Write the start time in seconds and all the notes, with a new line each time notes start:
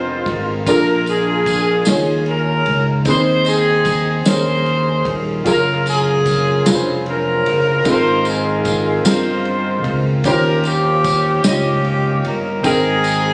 Already playing: F1 G#2 B3 C4 D#4 F4 G#4 A#4 C5
0.26 G#1, kick, ride
0.67 A#1 A#2 D4 F4 G#4 A4 A#4, kick, ride, tambourine
0.76 A#4
1.06 D4 F4 G#4, ride, tambourine
1.46 kick, ride, tambourine
1.85 D#2 D#3 C#4 D#4 F4 G#4 C#5, snare, ride, tambourine
2.26 C#4 F4 A#4, ride
2.66 C#2, ride
3.05 D#2 D#3 C4 D#4 G#4 B4 C5, kick, ride, tambourine
3.15 C5
3.45 C4 D#4 G#4, ride, tambourine
3.85 kick, snare, ride, tambourine
4.25 D#2 D#3 C#4 D#4 G4 G#4 A#4 C5, snare, ride, tambourine
4.33 G#4
4.66 ride
5.05 D#1, kick, ride
5.44 F#1 F#3 C#4 F4 G#4 A#4, kick, ride, tambourine
5.50 A#4
5.86 C#4 F4 G#4, ride, tambourine
6.26 kick, ride, tambourine
6.66 F1 F#3 F4 G#4 B4, snare, ride, tambourine
6.70 G#4
6.75 C5
7.06 C#4 F4 A#4, ride
7.46 F#1, ride
7.85 G#1 G#2 C4 D#4 F4 G#4 A4, kick, ride, tambourine
7.89 C5
7.94 A#4
8.25 C4 F4, ride, tambourine
8.29 G#4
8.65 kick, snare, ride, tambourine
9.04 G1 C4 D#4 F4 G#4 A#4, snare, ride, tambourine
9.08 C5
9.45 ride
9.84 C#2, kick, ride
10.24 D#2 D#3 C#4 F4 G4 A#4 C5, kick, ride, tambourine
10.64 A#3 C#4 G4, ride, tambourine
11.04 kick, ride, tambourine
11.44 C#2 A#3 C#4 F4 G4 D#5, snare, ride, tambourine
11.85 ride
12.25 G1 A#4, ride
12.63 G#1 G#2 C4 D#4 G#4 A#4 G5, kick, ride, tambourine
13.04 ride, tambourine